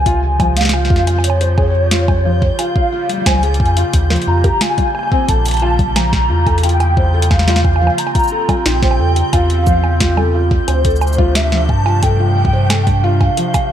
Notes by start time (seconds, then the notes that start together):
Already playing: C#2 C#3 F3 G3 F4 G#5 G6
0.06 F4, kick, closed hi-hat
0.40 F3, kick, closed hi-hat, high bongo, low conga
0.57 F5, snare, closed hi-hat
0.61 snare
0.65 snare
0.69 snare
0.73 F4, snare, high bongo
0.85 snare
0.90 F2 F4, kick
0.96 snare
1.07 F4, closed hi-hat, high bongo
1.19 high bongo
1.24 C#5, closed hi-hat
1.30 high bongo
1.41 C5, closed hi-hat
1.58 G#4, kick, high bongo
1.91 F4, snare, closed hi-hat
2.08 kick, high bongo, low conga
2.25 F3
2.42 kick
2.59 A#3 F4 F5, closed hi-hat, high bongo
2.76 F4, kick
2.92 F4
3.09 closed hi-hat, low conga
3.14 low conga
3.18 low conga
3.22 low conga
3.26 C#2 C5 G#5, kick, snare, closed hi-hat, high bongo, low conga
3.30 low conga
3.34 low conga
3.39 low conga
3.43 G#4, closed hi-hat
3.54 closed hi-hat
3.60 F2, kick
3.65 closed hi-hat
3.77 F4, closed hi-hat
3.93 D#2, kick, closed hi-hat
4.10 F3, snare, closed hi-hat, high bongo
4.16 closed hi-hat
4.22 closed hi-hat
4.27 F2 F4 A#5
4.44 G4, kick, closed hi-hat, high bongo
4.61 F4 G#5, snare, closed hi-hat
4.78 F4, kick, closed hi-hat, low conga
4.95 high bongo
4.99 high bongo
5.03 high bongo
5.07 high bongo
5.12 C4, kick, high bongo
5.16 high bongo
5.20 high bongo
5.24 A5, high bongo
5.28 A#1 F4 A4, kick, closed hi-hat
5.46 closed hi-hat, cabasa
5.48 closed hi-hat
5.51 closed hi-hat
5.54 closed hi-hat
5.57 closed hi-hat
5.60 F4, closed hi-hat, high bongo
5.79 kick, closed hi-hat, low conga
5.96 F3 A#5, snare, closed hi-hat, high bongo
6.13 kick, snare
6.30 E2 F4
6.46 A4, kick, closed hi-hat, high bongo
6.58 closed hi-hat
6.63 F4 G5, closed hi-hat
6.69 closed hi-hat
6.80 closed hi-hat, high bongo
6.97 C5, kick
7.14 A4
7.22 closed hi-hat
7.30 F5, kick, snare, high bongo
7.39 snare
7.48 F4, snare, closed hi-hat, low conga
7.56 snare
7.65 kick, high bongo
7.76 high bongo
7.81 F3
7.87 high bongo
7.98 C4 A#5, closed hi-hat
8.07 high bongo
8.15 F4, kick, closed hi-hat, cabasa
8.19 cabasa
8.24 cabasa
8.28 cabasa
8.32 A4
8.49 F4, kick, closed hi-hat, high bongo, low conga
8.65 A#1 G5, snare, closed hi-hat
8.82 C5, kick, snare
8.91 high bongo
8.99 E2 A4
9.16 closed hi-hat
9.33 E2 F4 F5, kick, closed hi-hat, high bongo
9.50 closed hi-hat
9.67 F3, kick, cabasa
9.84 high bongo
10.00 F4, kick, snare, closed hi-hat
10.17 A4, high bongo, low conga
10.34 F4
10.51 kick
10.68 D2 C3 F3 A3 D4 C5, closed hi-hat, high bongo
10.85 A4, kick, closed hi-hat, cabasa
10.90 cabasa
10.96 cabasa
11.01 high bongo, cabasa
11.07 cabasa
11.13 cabasa
11.18 F4, kick, low conga
11.35 E5, snare, closed hi-hat
11.52 F3, snare
11.69 G2 A5, kick
11.86 F4, high bongo
12.03 A4 G5, kick, closed hi-hat
12.20 F4
12.45 kick
12.53 C5
12.70 A4, snare, closed hi-hat, high bongo
12.87 kick, closed hi-hat, low conga
13.04 F4 F5
13.21 kick, high bongo
13.37 F3, closed hi-hat
13.54 kick, closed hi-hat, high bongo, cabasa